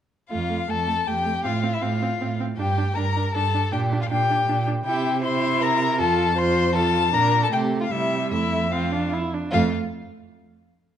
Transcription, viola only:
0.30 A3
0.49 A3
0.68 A3
0.87 A3
1.07 A3
1.25 A3
1.44 C4
1.63 C4
1.82 C4
2.02 C4
2.21 C4
2.40 C4
2.59 D4
2.78 D4
2.97 D4
3.16 D4
3.35 D4
3.54 D4
3.72 D4
3.92 D4
4.10 D4
4.30 D4
4.48 D4
4.67 D4
4.85 E4
5.24 E4
5.99 F4
6.36 F4
6.75 F4
7.13 D4
7.52 A3
7.92 G3
8.32 A3
8.71 C4
8.92 D4
9.13 E4
9.34 D4
9.53 A3

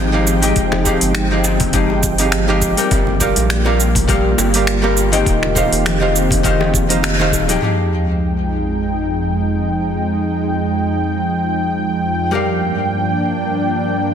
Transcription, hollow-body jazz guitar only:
0.12 F3 D#4 G4 G#4 F5
0.42 F3 D#4 G4 G#4 G5
0.85 F3 D#4 G4 G#4 F5
1.31 F3 D#4 G4 G#4 F5
1.73 F3 D#4 G4 G#4 F5
2.19 F3 D#4 G4 G#4 F5
2.48 F3 D#4 G4 G#4 F5
2.77 G3 G4 A#4 D5 G5
3.20 G3 G4 A#4 D5 F5
3.64 G3 G4 A#4 D5 F5
4.08 G3 G4 A#4 D5 F5
4.54 G3 G4 A#4 D5 F5
4.82 G3 G4 A#4 D5 F5
5.12 D#3 D#4 G4 C5 G5
5.55 D#3 D#4 G4 C5 F5
6.00 D#3 D#4 G4 C5 F5
6.43 D#3 D#4 G4 C5 F5
6.89 D#3 D#4 G4 C5 F5
7.19 D#3 D#4 G4 C5 F5
7.48 F3 D#4 G4 G#4 G5
7.61 F3 D#4 G4 G#4 F5
12.31 G3 G4 A#4 D5 F5

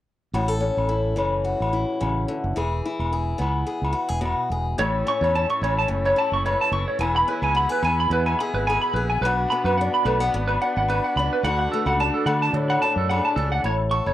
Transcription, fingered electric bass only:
0.33 A1
0.77 A1
1.17 F#1
1.60 A1
2.01 A1
2.44 F#1
2.57 E1
2.99 E1
3.40 C#2
3.82 C#2
4.10 E1
4.50 E1
4.79 A1
5.21 E2
5.62 A1
5.89 F#1
6.32 F#1
6.72 F#1
6.99 E1
7.42 C#2
7.82 E2
8.10 E2
8.54 G#1
8.93 A#1
9.21 B1
9.64 F#2
10.05 B1
10.34 G#1
10.76 G#1
11.16 C#2
11.43 D2
11.86 C#2
12.26 D3
12.53 D3
12.96 F#2
13.36 C#2
13.64 A1
14.06 F#1

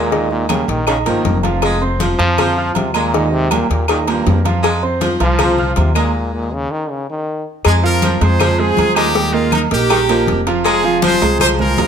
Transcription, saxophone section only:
Already playing: G#3
0.88 D#3
1.07 F3
1.64 G#3
2.01 F3
2.39 F3
2.95 G#3
3.89 D#3
4.09 F3
4.63 G#3
5.01 F3
5.39 F3
5.95 G#3
7.65 G#3
8.03 F3
8.40 F3
8.96 G#3
9.90 D#3
10.09 F3
10.65 G#3
11.03 F3
11.41 F3

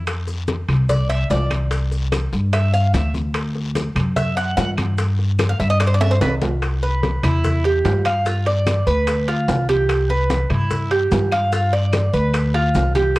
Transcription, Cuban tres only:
0.89 D5
1.09 E5
1.30 D5
2.53 E5
2.74 F5
2.94 E5
4.16 E5
4.37 F#5
4.57 F#5
5.49 F5
5.60 E5
5.70 D#5
5.80 D5
5.87 C5
5.94 D5
6.01 E5
6.11 C5
6.21 B4
6.83 B4
7.24 E4
7.65 G4
8.06 F5
8.26 F4
8.46 D5
8.87 B4
9.28 F4
9.69 G4
10.10 B4
10.50 E4
10.91 G4
11.32 F5
11.52 F4
11.73 D5
12.14 B4
12.54 F4
12.95 G4

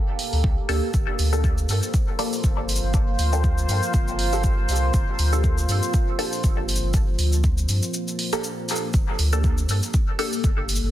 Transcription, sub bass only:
0.33 D2
0.44 C2
0.69 D2
0.94 G1
1.19 D2
1.69 G2
2.44 G1
2.83 G1
3.19 D2
3.69 G2
3.94 G1
4.69 C2
4.94 G1
5.19 D2
5.69 G2
6.44 G1
6.83 G1
7.19 D2
7.69 G2
8.94 G1
9.19 D2
9.69 G2
10.44 G1
10.83 G1

